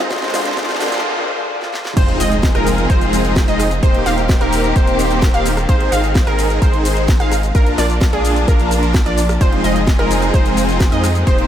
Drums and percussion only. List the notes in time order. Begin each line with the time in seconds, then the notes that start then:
0.11 kick, snare, closed hi-hat, shaker
0.16 snare
0.22 snare, closed hi-hat
0.28 snare
0.34 snare, open hi-hat, shaker
0.40 snare
0.45 snare, closed hi-hat, shaker
0.51 snare
0.57 kick, snare, closed hi-hat, shaker
0.63 snare
0.69 snare, closed hi-hat, shaker
0.75 snare
0.80 snare, open hi-hat, shaker
0.86 snare
0.92 snare, closed hi-hat, shaker
0.98 snare
1.62 snare
1.74 snare
1.85 snare
1.97 kick, closed hi-hat, crash, shaker
2.08 closed hi-hat
2.20 open hi-hat, shaker
2.32 closed hi-hat, shaker
2.43 kick, snare, closed hi-hat, shaker
2.55 cross-stick, closed hi-hat
2.67 open hi-hat, shaker
2.78 closed hi-hat, shaker
2.90 kick, closed hi-hat, shaker
3.01 closed hi-hat, shaker
3.13 open hi-hat, shaker
3.25 closed hi-hat, shaker
3.36 kick, snare, closed hi-hat, shaker
3.48 closed hi-hat, shaker
3.60 cross-stick, open hi-hat, shaker
3.71 closed hi-hat, shaker
3.83 kick, closed hi-hat, shaker
3.94 closed hi-hat
4.06 snare, open hi-hat, shaker
4.18 closed hi-hat, shaker
4.29 kick, snare, closed hi-hat, shaker
4.41 closed hi-hat
4.53 open hi-hat, shaker
4.64 closed hi-hat, shaker
4.76 kick, closed hi-hat, shaker
4.87 closed hi-hat, shaker
4.99 open hi-hat, shaker
5.11 closed hi-hat, shaker
5.22 kick, snare, closed hi-hat, shaker
5.34 closed hi-hat, shaker
5.46 open hi-hat, shaker
5.57 cross-stick, closed hi-hat, shaker
5.69 kick, closed hi-hat, shaker
5.80 closed hi-hat
5.92 open hi-hat, shaker
6.04 closed hi-hat, shaker
6.15 kick, snare, closed hi-hat, shaker
6.27 cross-stick, closed hi-hat
6.39 open hi-hat, shaker
6.50 closed hi-hat, shaker
6.62 kick, closed hi-hat, shaker
6.74 closed hi-hat, shaker
6.85 open hi-hat, shaker
6.97 closed hi-hat, shaker
7.08 kick, snare, closed hi-hat, shaker
7.20 closed hi-hat, shaker
7.32 cross-stick, open hi-hat, shaker
7.43 closed hi-hat, shaker
7.55 kick, closed hi-hat, shaker
7.67 closed hi-hat, shaker
7.78 snare, open hi-hat, shaker
7.90 closed hi-hat, shaker
8.01 kick, snare, closed hi-hat, shaker
8.13 closed hi-hat
8.25 open hi-hat, shaker
8.36 closed hi-hat, shaker
8.48 kick, closed hi-hat, shaker
8.60 closed hi-hat, shaker
8.71 open hi-hat, shaker
8.83 closed hi-hat, shaker
8.94 kick, snare, closed hi-hat, shaker
9.06 closed hi-hat, shaker
9.18 open hi-hat, shaker
9.29 cross-stick, closed hi-hat, shaker
9.41 kick, closed hi-hat, shaker
9.53 closed hi-hat
9.64 open hi-hat, shaker
9.76 closed hi-hat, shaker
9.87 kick, snare, closed hi-hat, shaker
9.99 cross-stick, closed hi-hat
10.11 open hi-hat, shaker
10.22 closed hi-hat, shaker
10.34 kick, closed hi-hat, shaker
10.46 closed hi-hat, shaker
10.57 open hi-hat, shaker
10.69 closed hi-hat, shaker
10.80 kick, snare, closed hi-hat, shaker
10.92 closed hi-hat, shaker
11.04 cross-stick, open hi-hat, shaker
11.15 closed hi-hat, shaker
11.27 kick, closed hi-hat, shaker
11.39 closed hi-hat